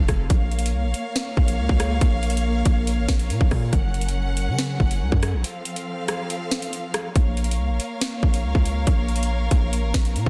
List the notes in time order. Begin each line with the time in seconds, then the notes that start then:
Already playing: F3 C4 A4 F5
0.08 F1, kick, cross-stick, closed hi-hat
0.30 A#1 A#3 A#4 C#5 F5, kick, closed hi-hat
0.52 closed hi-hat
0.59 closed hi-hat
0.66 closed hi-hat
0.73 C2
0.84 A#1
0.94 closed hi-hat
1.16 snare, closed hi-hat
1.37 A#1, kick
1.48 closed hi-hat
1.59 C#2
1.69 C#2, kick
1.80 cross-stick, closed hi-hat
2.01 A#1, kick, closed hi-hat
2.23 closed hi-hat
2.30 closed hi-hat
2.37 closed hi-hat
2.65 A#1, kick, closed hi-hat
2.87 closed hi-hat
2.98 A1
3.09 A#1, kick, snare
3.19 closed hi-hat
3.30 A#2, closed hi-hat
3.41 A#1, kick
3.51 A#2, kick, cross-stick, open hi-hat
3.73 F#1 F#3 C#4 F#5, kick, closed hi-hat
3.94 closed hi-hat
4.01 closed hi-hat
4.09 closed hi-hat
4.37 closed hi-hat
4.48 C#3
4.59 snare, closed hi-hat
4.80 F#1, kick
4.91 closed hi-hat
5.01 C#2
5.12 F#2, kick
5.23 cross-stick, closed hi-hat
5.33 A#1
5.44 F3 C4 A4 F5, closed hi-hat
5.65 closed hi-hat
5.76 closed hi-hat
6.08 cross-stick, closed hi-hat
6.30 closed hi-hat
6.51 snare
6.62 closed hi-hat
6.73 closed hi-hat
6.94 cross-stick, closed hi-hat
7.16 A#1 A#3 A#4 C#5 F5, kick, closed hi-hat
7.37 closed hi-hat
7.44 closed hi-hat
7.51 closed hi-hat
7.58 C2
7.69 A#1
7.80 closed hi-hat
8.01 snare, closed hi-hat
8.23 A#1, kick
8.34 closed hi-hat
8.44 C#2
8.55 C#2, kick
8.65 closed hi-hat
8.87 A#1, kick, closed hi-hat
9.09 closed hi-hat
9.16 closed hi-hat
9.23 closed hi-hat
9.51 A#1, kick, closed hi-hat
9.73 closed hi-hat
9.84 A1
9.94 A#1, kick, snare
10.05 closed hi-hat
10.16 A#2, closed hi-hat
10.26 A#1, kick